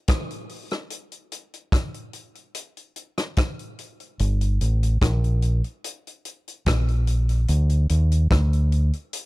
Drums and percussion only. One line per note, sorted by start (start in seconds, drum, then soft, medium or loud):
0.08 kick loud
0.08 cross-stick loud
0.08 closed hi-hat medium
0.31 closed hi-hat medium
0.49 open hi-hat medium
0.71 cross-stick medium
0.71 closed hi-hat medium
0.90 closed hi-hat medium
1.12 closed hi-hat medium
1.32 closed hi-hat medium
1.54 closed hi-hat medium
1.72 kick loud
1.72 cross-stick medium
1.72 closed hi-hat medium
1.94 closed hi-hat medium
2.13 closed hi-hat medium
2.35 closed hi-hat soft
2.55 closed hi-hat loud
2.77 closed hi-hat soft
2.96 closed hi-hat medium
3.18 cross-stick medium
3.18 closed hi-hat medium
3.37 kick loud
3.37 cross-stick loud
3.37 closed hi-hat loud
3.59 closed hi-hat medium
3.79 closed hi-hat medium
4.00 closed hi-hat soft
4.19 closed hi-hat medium
4.41 closed hi-hat medium
4.61 closed hi-hat medium
4.83 closed hi-hat medium
5.02 kick loud
5.02 cross-stick medium
5.02 closed hi-hat medium
5.24 closed hi-hat medium
5.42 closed hi-hat medium
5.64 closed hi-hat soft
5.84 closed hi-hat loud
6.07 closed hi-hat soft
6.25 closed hi-hat medium
6.48 closed hi-hat soft
6.66 kick loud
6.66 cross-stick loud
6.66 closed hi-hat medium
6.88 closed hi-hat medium
7.07 closed hi-hat medium
7.29 closed hi-hat medium
7.48 closed hi-hat medium
7.69 closed hi-hat medium
7.89 closed hi-hat medium
8.12 closed hi-hat medium
8.31 kick loud
8.31 cross-stick loud
8.31 closed hi-hat medium
8.53 closed hi-hat medium
8.72 closed hi-hat medium
8.93 closed hi-hat soft
9.13 closed hi-hat loud